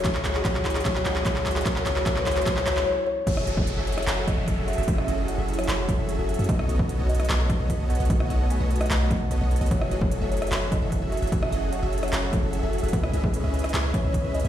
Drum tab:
CC |--------------------------------|--------------------------------|x-------------------------------|--------------------------------|
HH |x---x---x---xxxxx---x---x---xxxx|x---x---x---xxxxx---x-----------|x---x---x---xxxxx---x---x---xxxx|x---x---x---xxxxx---x---x---xxxx|
CP |x-x-x-x-x-x-x-x-x-x-x-x-x-x-x-x-|x-x-x-x-x-x-x-x-x-x-x-x---------|----------------x---------------|----------------x---------------|
SD |--------------------------------|--------------------------------|--r-----------r-----------------|--r-----------r-----------------|
BD |o-------o-------o-------o-------|o-------o-------o---------------|o-----o-------------o---o-------|o-------------------o-----------|

CC |--------------------------------|--------------------------------|--------------------------------|--------------------------------|
HH |x---x---x---xxxxx---x---x---xxxx|x---x---x---xxxxx---x---x---xxxx|x---x---x---xxxxx---x---x---xxxx|x---x---x---xxxxx---x---x---xxxx|
CP |----------------x---------------|----------------x---------------|----------------x---------------|----------------x---------------|
SD |--r-----------r-----------------|--r-----------r-----------------|--r-----------r-----------------|--r-----------r-----------------|
BD |o-----o-------------o---o-------|o-------------------o-----------|o-----o-------------o---o-------|o-------------------o-----------|

CC |--------------------------------|
HH |x---x---x---xxxxx---x---x---xxx-|
CP |----------------x---------------|
SD |--r-----------r-----------------|
BD |o-----o-------------o---o-------|